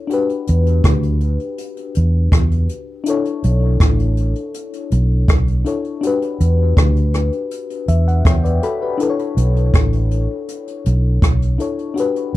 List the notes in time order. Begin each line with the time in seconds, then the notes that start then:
Already playing: C#5
0.07 D4 F#4, closed hi-hat
0.12 G4 B4
0.29 closed hi-hat
0.47 E2, closed hi-hat
0.66 closed hi-hat
0.84 D2, kick, cross-stick, closed hi-hat
1.03 closed hi-hat
1.20 closed hi-hat
1.39 closed hi-hat
1.58 closed hi-hat
1.77 closed hi-hat
1.95 E2, closed hi-hat
2.32 E2, kick, cross-stick, closed hi-hat
2.51 closed hi-hat
2.69 closed hi-hat
3.04 D4 E4, closed hi-hat
3.08 A4 C#5
3.25 closed hi-hat
3.43 B1, closed hi-hat
3.80 A1, kick, cross-stick, closed hi-hat
3.99 closed hi-hat
4.17 closed hi-hat
4.35 closed hi-hat
4.54 closed hi-hat
4.73 closed hi-hat
4.91 B1, closed hi-hat
5.28 B1, kick, cross-stick, closed hi-hat
5.48 closed hi-hat
5.65 D4 E4 A4 C#5, closed hi-hat
5.84 closed hi-hat
6.01 D4 F#4 G4, closed hi-hat
6.07 B4
6.22 closed hi-hat
6.40 E2, closed hi-hat
6.77 D2, kick, cross-stick, closed hi-hat
6.96 closed hi-hat
7.14 cross-stick, closed hi-hat
7.33 closed hi-hat
7.51 closed hi-hat
7.70 closed hi-hat
7.88 E2 E5, closed hi-hat
8.08 F#5, closed hi-hat
8.25 E2 C#5 E5 G5, kick, cross-stick, closed hi-hat
8.44 B4 D5, closed hi-hat
8.63 F#4 A4 B5, closed hi-hat
8.82 G4 B4
8.98 D4 E4 A4, closed hi-hat
9.03 B4
9.10 C#5
9.19 closed hi-hat
9.37 B1, closed hi-hat
9.56 closed hi-hat
9.74 A1, kick, cross-stick, closed hi-hat
9.93 closed hi-hat
10.11 closed hi-hat
10.48 closed hi-hat
10.67 closed hi-hat
10.85 B1, closed hi-hat
11.22 B1, kick, cross-stick, closed hi-hat
11.42 closed hi-hat
11.58 D4 E4 A4 C#5, closed hi-hat
11.78 closed hi-hat
11.94 D4 F#4, closed hi-hat
11.98 G4 B4
12.16 closed hi-hat